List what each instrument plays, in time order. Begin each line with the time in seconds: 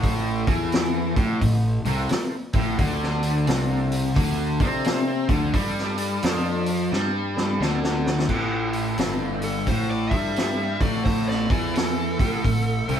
Already playing: fingered electric bass A1, overdriven electric guitar A2
0.00 tonewheel organ E4 A4 C5, kick, open hi-hat
0.47 fingered electric bass E2, overdriven electric guitar E3, kick, open hi-hat
0.72 snare, open hi-hat
1.16 fingered electric bass A1, overdriven electric guitar A2, kick, open hi-hat
1.41 fingered electric bass A1, overdriven electric guitar A2, kick, open hi-hat
1.85 fingered electric bass C2, overdriven electric guitar C3, tonewheel organ E4 A4 C5, open hi-hat
2.09 muted fingered electric bass stroke, muted overdriven electric guitar stroke, snare, open hi-hat
2.53 fingered electric bass A1, overdriven electric guitar A2, tonewheel organ E4 A4 C5, kick, open hi-hat
2.77 fingered electric bass D2, overdriven electric guitar D3, tonewheel organ D4 A4 D5, kick, open hi-hat
3.03 snare
3.23 open hi-hat
3.47 fingered electric bass C2, overdriven electric guitar C3, snare, open hi-hat
3.92 open hi-hat
4.16 fingered electric bass D2, overdriven electric guitar D3, kick, open hi-hat
4.60 fingered electric bass C3, overdriven electric guitar C4, tonewheel organ D4 A4 D5, kick, open hi-hat
4.84 snare, open hi-hat
5.28 fingered electric bass D2, overdriven electric guitar D3, tonewheel organ D4 A4 F5, kick, open hi-hat
5.53 fingered electric bass G2, overdriven electric guitar G3, tonewheel organ D4 A4 D5, kick, open hi-hat
5.78 snare
5.98 open hi-hat
6.22 fingered electric bass F2, overdriven electric guitar F3, snare, open hi-hat
6.66 open hi-hat
6.92 fingered electric bass G2, overdriven electric guitar G3, snare
7.34 tonewheel organ D4 A4 D5, snare
7.60 fingered electric bass D2, overdriven electric guitar D3, snare
7.84 snare
8.03 tonewheel organ D4 A4 D5, snare
8.19 snare
8.27 fingered electric bass A1, overdriven electric guitar A2, tonewheel organ E4 A4 C5, kick, crash
8.73 open hi-hat
8.98 fingered electric bass G1, overdriven electric guitar G2, snare, open hi-hat
9.42 lead electric guitar A4, open hi-hat
9.67 fingered electric bass A1, overdriven electric guitar A2, lead electric guitar C5, kick, open hi-hat
9.90 lead electric guitar D5
10.10 fingered electric bass G2, overdriven electric guitar G3, tonewheel organ E4 A4 C5, lead electric guitar E5, kick, open hi-hat
10.36 snare, open hi-hat
10.79 fingered electric bass A1, overdriven electric guitar A2, tonewheel organ E4 A4 C5, lead electric guitar D5, kick, open hi-hat
11.05 tonewheel organ E4 A4 C5, lead electric guitar C5, kick, open hi-hat
11.29 lead electric guitar D5, snare
11.50 fingered electric bass E2, overdriven electric guitar E3, lead electric guitar D5, kick, open hi-hat
11.74 lead electric guitar A4, snare, open hi-hat
12.19 fingered electric bass A1, overdriven electric guitar A2, kick, open hi-hat
12.44 fingered electric bass A1, overdriven electric guitar A2, kick, open hi-hat
12.89 fingered electric bass C2, overdriven electric guitar C3, tonewheel organ E4 A4 C5, open hi-hat